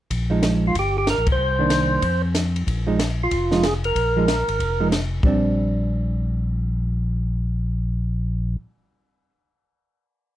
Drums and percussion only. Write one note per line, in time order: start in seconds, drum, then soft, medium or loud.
0.11 kick soft
0.11 ride medium
0.43 snare medium
0.43 hi-hat pedal medium
0.43 ride medium
0.75 kick soft
0.75 ride medium
1.07 snare medium
1.07 hi-hat pedal medium
1.07 ride medium
1.27 kick medium
1.27 ride medium
1.70 snare medium
1.70 hi-hat pedal medium
1.70 ride medium
2.02 kick soft
2.02 ride medium
2.35 snare medium
2.35 hi-hat pedal medium
2.35 ride medium
2.56 ride soft
2.67 kick soft
2.67 ride medium
2.99 snare medium
2.99 hi-hat pedal medium
2.99 ride medium
3.31 kick soft
3.31 ride medium
3.51 snare soft
3.63 snare medium
3.63 hi-hat pedal medium
3.63 ride medium
3.84 ride soft
3.96 kick soft
3.96 ride medium
4.28 snare medium
4.28 hi-hat pedal medium
4.28 ride medium
4.49 ride soft
4.60 kick soft
4.60 ride medium
4.92 snare medium
4.92 hi-hat pedal soft
4.92 ride medium
5.23 kick medium